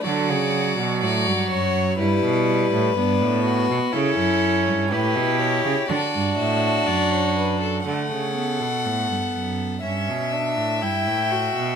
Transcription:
X:1
M:4/4
L:1/16
Q:1/4=61
K:Dmix
V:1 name="Violin"
d4 d2 ^c2 B8 | A4 B2 ^c2 d2 e2 d c B A | f8 e4 g4 |]
V:2 name="Violin"
F4 F4 E4 D2 F2 | E4 G4 F8 | A8 e8 |]
V:3 name="Viola"
F,8 G,4 B,4 | ^C4 E4 D8 | A,2 B,6 ^C2 D2 E2 F2 |]
V:4 name="Cello" clef=bass
D, ^C,2 B,, A,, G,, F,,2 G,, B,,2 A,, G,, A,,2 B,, | ^C, F,,2 G,, A,, B,,2 C, D, G,, A,,2 F,,4 | D, ^C,2 B,, A,, G,, F,,2 G,, B,,2 A,, G,, A,,2 B,, |]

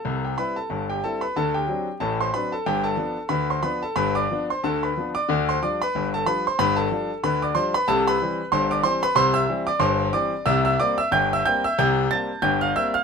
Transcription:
X:1
M:2/4
L:1/16
Q:"Swing 16ths" 1/4=92
K:C
V:1 name="Grand piano"
[Aa] [Gg] [Bb] [Aa]2 [Gg] [Aa] [Bb] | [Aa] [Gg]3 [Aa] [cc'] [Bb] [Aa] | [Gg] [Aa]3 [Bb] [cc'] [Bb] [Aa] | [Bb] [dd']2 [cc'] [Aa] [Bb]2 [dd']- |
[dd'] [cc'] [dd'] [Bb]2 [Aa] [Bb] [cc'] | [Bb] [Aa]3 [Bb] [dd'] [cc'] [Bb] | [Aa] [Bb]3 [cc'] [dd'] [cc'] [Bb] | [cc'] [ee']2 [dd'] [cc']2 [dd']2 |
[ee'] [ee'] [dd'] [ee'] [gg'] [ee'] [gg'] [ee'] | [gg']2 [aa']2 [gg'] [ff'] [ee'] [ff'] |]
V:2 name="Grand piano" clef=bass
[C,,C,]2 [G,CE]2 [G,,,G,,]2 [G,CE]2 | [D,,D,]2 [^F,CD]2 [A,,,A,,]2 [F,CD]2 | [G,,,G,,]2 [F,B,D]2 [D,,D,]2 [F,B,D]2 | [G,,,G,,]2 [F,B,D]2 [D,,D,]2 [F,B,D]2 |
[D,,D,]2 [F,G,D]2 [G,,,G,,]2 [F,G,D]2 | [G,,,G,,]2 [F,G,D]2 [D,,D,]2 [F,G,D]2 | [C,,C,]2 [E,G,C]2 [G,,,G,,]2 [E,G,C]2 | [C,,C,]2 [E,G,C]2 [G,,,G,,]2 [E,G,C]2 |
[C,,C,]2 [G,_B,C]2 [G,,,G,,]2 [G,B,C]2 | [C,,C,]2 [G,_B,C]2 [G,,,G,,]2 [G,B,C]2 |]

